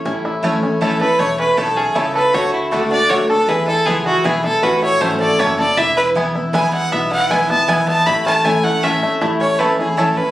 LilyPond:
<<
  \new Staff \with { instrumentName = "Fiddle" } { \time 3/4 \key a \major \tempo 4 = 157 r2 a'8 b'8 | cis''8 b'8 a'8 gis'8 a'8 b'8 | cis''8 e'8 a'8 d''8 cis''8 a'8 | b'8 a'8 gis'8 fis'8 gis'8 a'8 |
b'8 cis''8 c''8 d''8 cis''8 d''8 | e''8 b'8 r4 gis''8 fis''8 | e''8 fis''8 gis''8 a''8 gis''8 a''8 | b''8 a''8 gis''8 fis''8 e''8. r16 |
r8 cis''8 b'8 gis'8 a'8 b'8 | }
  \new Staff \with { instrumentName = "Mandolin" } { \time 3/4 \key a \major r4 <a e' cis'' a''>16 r8. <a e' cis'' a''>16 r8. | r4 <a e' cis'' a''>16 r8. <a e' cis'' a''>16 r8. | r4 <a fis' d'' fis''>16 r8. <a fis' d'' fis''>16 r8. | r4 <b e' b' gis''>16 r8. <b e' b' gis''>16 r8. |
r4 <a e' cis'' a''>16 r8. <a e' cis'' a''>16 r8. | r4 <b e' b' gis''>16 r8. <b e' b' gis''>16 r8. | r4 <b e' b' gis''>16 r8. <b e' b' gis''>16 r8. | r4 <a e' cis'' a''>16 r8. <a e' cis'' a''>16 r8. |
r4 <a e' cis'' a''>16 r8. <a e' cis'' a''>16 r8. | }
  \new Staff \with { instrumentName = "Five-string banjo" } { \time 3/4 \key a \major cis'8 e'8 a8 cis'8 e'8 a'8 | a8 cis'8 a8 cis'8 e'8 a'8 | a4 a8 d'8 fis'8 a'8 | e'8 e'8 b8 e'8 e'8 e'8 |
cis'8 e'8 a8 a'8 e'8 a'8 | e'8 e'8 b8 e'8 e'8 e'8 | b8 e'8 e'8 b8 e'8 b8 | a8 cis'8 e'8 a8 cis'8 a8 |
a8 cis'8 a'8 e'8 a'8 cis'8 | }
  \new Staff \with { instrumentName = "Resonator guitar played with a steel bar" } { \time 3/4 \key a \major e'2.~ | e'2. | fis'2. | gis'2~ gis'8 r8 |
fis'2. | e'2.~ | e'2. | e'2~ e'8 r8 |
e'2. | }
  \new Staff \with { instrumentName = "Steel-string acoustic guitar" } { \time 3/4 \key a \major << { r4 <e a cis' e'>8 <cis' e'>8 <e a cis' e'>8 <cis' e'>8 | r2. | r4 <d a d' fis'>8 <d' fis'>8 <d a d' fis'>8 <d' fis'>8 | r4 <e gis b e'>4 <e gis b e'>8 <b e'>8 |
r4 <e a cis' e'>4 <e a cis' e'>8 <cis' e'>8 | r4 <e gis b e'>8 <b e'>8 <e gis b e'>4 | r4 <e gis b e'>8 <b e'>8 <e gis b e'>4 | r4 <e a cis' e'>8 <cis' e'>8 <e a cis' e'>8 <cis' e'>8 |
r4 <e a cis' e'>8 <cis' e'>8 <e a cis' e'>8 <cis' e'>8 | } \\ { a,2 r4 | e,4 b,4 cis4 | d2 r4 | e,2 r4 |
a,2 r4 | e,2 r4 | b,2 r4 | a,2 r4 |
a,2 r4 | } >> }
  \new Staff \with { instrumentName = "Upright bass" } { \clef bass \time 3/4 \key a \major a,,2. | e,,4 b,,4 cis,4 | d,4 cis,4 d,4 | e,4 cis,4 b,,4 |
a,,4 gis,,4 fis,,4 | e,,2. | b,,2. | a,,2. |
a,,2. | }
>>